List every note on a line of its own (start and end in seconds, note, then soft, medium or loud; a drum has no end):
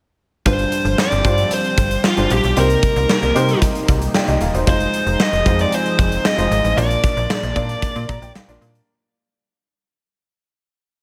0.45 0.65 G1 medium
0.45 1.21 G2 medium
0.45 2.54 F3 medium
0.45 4.63 G3 medium
0.45 1.16 G3 medium
0.45 2.54 C4 medium
0.45 1.16 D4 medium
0.45 1.16 F4 medium
0.45 1.17 C5 medium
0.45 0.96 C5 medium
0.45 kick loud
0.45 closed hi-hat medium
0.59 closed hi-hat soft
0.72 closed hi-hat medium
0.85 0.95 G1 medium
0.85 closed hi-hat soft
0.98 1.49 D5 medium
0.98 snare loud
1.12 1.22 G1 medium
1.12 closed hi-hat soft
1.24 1.44 G2 medium
1.24 2.07 G3 medium
1.24 2.07 D4 medium
1.24 2.07 F4 medium
1.24 2.07 C5 medium
1.24 kick medium
1.24 closed hi-hat medium
1.38 closed hi-hat soft
1.51 2.02 C5 medium
1.51 closed hi-hat medium
1.64 closed hi-hat soft
1.78 1.97 G1 medium
1.78 kick medium
1.78 closed hi-hat medium
1.91 closed hi-hat medium
2.04 2.32 F4 medium
2.04 snare loud
2.17 2.27 G1 medium
2.17 2.52 G3 medium
2.17 2.52 D4 medium
2.17 2.53 F4 medium
2.17 2.53 C5 medium
2.17 closed hi-hat soft
2.30 2.40 A#1 loud
2.30 2.58 G4 medium
2.30 closed hi-hat medium
2.44 2.54 B1 medium
2.44 closed hi-hat soft
2.56 2.76 C2 loud
2.56 4.65 C3 medium
2.56 3.32 C3 medium
2.56 3.27 A#3 medium
2.56 4.65 A#3 medium
2.56 6.73 D#4 medium
2.56 3.27 D#4 medium
2.56 3.27 G4 medium
2.56 3.59 A#4 medium
2.56 3.27 C5 medium
2.56 closed hi-hat medium
2.70 closed hi-hat soft
2.83 kick medium
2.83 closed hi-hat medium
2.96 3.06 C2 loud
2.96 closed hi-hat soft
3.09 snare loud
3.23 3.32 C2 medium
3.23 closed hi-hat soft
3.35 3.55 C3 loud
3.35 4.17 A#3 medium
3.35 4.14 D#4 medium
3.35 4.14 G4 medium
3.35 4.15 C5 medium
3.35 closed hi-hat medium
3.49 closed hi-hat soft
3.62 kick medium
3.62 closed hi-hat medium
3.75 closed hi-hat soft
3.88 4.08 C2 loud
3.88 kick medium
3.88 closed hi-hat medium
4.02 closed hi-hat medium
4.14 4.27 F4 medium
4.14 4.27 D5 medium
4.14 4.39 G5 medium
4.14 snare loud
4.28 4.38 C2 medium
4.28 4.53 G4 medium
4.28 4.53 D#5 medium
4.28 closed hi-hat soft
4.41 4.51 D#1 medium
4.41 4.66 F5 medium
4.41 closed hi-hat medium
4.54 4.64 E1 medium
4.54 4.66 D#4 medium
4.54 4.66 C5 medium
4.54 closed hi-hat soft
4.67 4.87 F1 medium
4.67 8.84 F3 medium
4.67 5.37 G#3 medium
4.67 6.76 C4 medium
4.67 5.38 D#4 medium
4.67 5.38 F4 medium
4.67 6.76 G#4 medium
4.67 5.38 C5 medium
4.67 5.22 C5 medium
4.67 kick loud
4.67 closed hi-hat medium
4.80 closed hi-hat soft
4.94 closed hi-hat medium
5.06 5.16 F1 medium
5.06 closed hi-hat soft
5.20 5.58 D#5 medium
5.20 snare loud
5.33 5.43 F1 medium
5.33 closed hi-hat soft
5.46 5.66 F2 loud
5.46 6.28 G#3 medium
5.46 6.28 D#4 medium
5.46 6.28 F4 medium
5.46 6.29 C5 medium
5.46 kick medium
5.46 closed hi-hat medium
5.59 5.74 D5 medium
5.59 closed hi-hat soft
5.72 6.27 C5 medium
5.72 closed hi-hat medium
5.86 closed hi-hat soft
5.99 6.18 F1 medium
5.99 kick medium
5.99 closed hi-hat medium
6.12 closed hi-hat medium
6.25 6.78 D#5 loud
6.25 snare loud
6.37 6.48 F1 medium
6.37 6.73 G#3 medium
6.37 6.73 D#4 medium
6.37 6.73 F4 medium
6.37 6.73 C5 medium
6.37 closed hi-hat soft
6.51 6.61 G#1 medium
6.51 closed hi-hat medium
6.64 6.74 A1 medium
6.64 closed hi-hat soft
6.76 6.97 A#1 loud
6.76 7.52 A#2 medium
6.76 7.47 A#3 medium
6.76 8.86 A#3 medium
6.76 7.48 D4 medium
6.76 8.86 D4 medium
6.76 7.48 F4 medium
6.76 7.48 D5 medium
6.76 8.32 D5 medium
6.76 closed hi-hat medium
6.91 closed hi-hat soft
7.04 kick loud
7.04 closed hi-hat medium
7.17 7.27 A#1 loud
7.17 closed hi-hat soft
7.30 snare loud
7.43 7.53 A#1 loud
7.43 closed hi-hat soft
7.56 7.76 A#2 medium
7.56 8.38 A#3 medium
7.56 8.38 D4 medium
7.56 8.39 F4 medium
7.56 8.39 D5 medium
7.56 kick medium
7.56 closed hi-hat medium
7.69 closed hi-hat soft
7.82 kick medium
7.82 closed hi-hat medium
7.96 8.06 A#2 medium
7.96 closed hi-hat soft
8.09 8.19 A#2 medium
8.09 8.21 A#5 medium
8.09 kick medium
8.09 closed hi-hat medium
8.22 8.32 A#1 medium
8.22 8.34 G5 medium
8.22 closed hi-hat medium
8.35 8.84 F5 medium
8.35 snare loud
8.48 8.58 A#1 medium
8.48 8.84 A#3 medium
8.48 8.84 D4 medium
8.48 8.84 F4 medium
8.48 8.84 D5 medium
8.48 closed hi-hat soft
8.61 8.81 A#2 medium
8.61 closed hi-hat medium
8.75 closed hi-hat soft